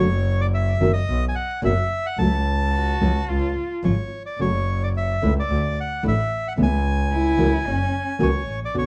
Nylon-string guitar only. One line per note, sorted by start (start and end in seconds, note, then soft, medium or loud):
0.80 0.89 B2 medium
0.80 0.89 D#3 medium
0.80 0.89 C#4 medium
0.80 0.89 F#4 medium
1.62 1.71 B2 medium
1.62 1.71 D#3 medium
1.62 1.72 C#4 medium
1.62 1.72 F#4 medium
2.18 2.27 C#3 medium
2.18 2.27 F#3 medium
2.18 2.27 A3 medium
2.18 2.27 C#4 medium
2.18 2.27 F#4 medium
3.01 3.10 C#3 medium
3.01 3.10 F3 medium
3.01 3.10 G#3 medium
3.01 3.10 C#4 medium
3.01 3.10 F4 medium
3.84 3.93 C#3 medium
3.84 3.93 F3 medium
3.84 3.93 G#3 medium
3.84 3.93 C#4 medium
3.84 3.93 F4 medium
4.39 4.48 C#3 medium
4.39 4.49 F#3 medium
4.39 4.49 A3 medium
4.39 4.49 C#4 medium
4.39 4.49 F#4 medium
5.22 5.31 D3 medium
5.22 5.31 A3 medium
5.22 5.31 D4 medium
5.22 5.31 E4 medium
6.03 6.12 D3 medium
6.03 6.12 A3 medium
6.03 6.12 D4 medium
6.03 6.13 E4 medium
6.57 6.66 C#3 medium
6.57 6.67 E3 medium
6.57 6.67 A3 medium
6.57 6.67 B3 medium
6.57 6.67 E4 medium
7.37 7.47 C#3 medium
7.37 7.47 E3 medium
7.37 7.48 A#3 medium
7.37 7.47 C#4 medium
7.37 7.48 F#4 medium
8.19 8.29 C#3 medium
8.19 8.29 E3 medium
8.19 8.29 A#3 medium
8.19 8.29 C#4 medium
8.19 8.29 F#4 medium
8.74 8.83 B2 medium
8.74 8.84 D3 medium
8.74 8.84 B3 medium
8.74 8.83 C#4 medium
8.74 8.84 F#4 medium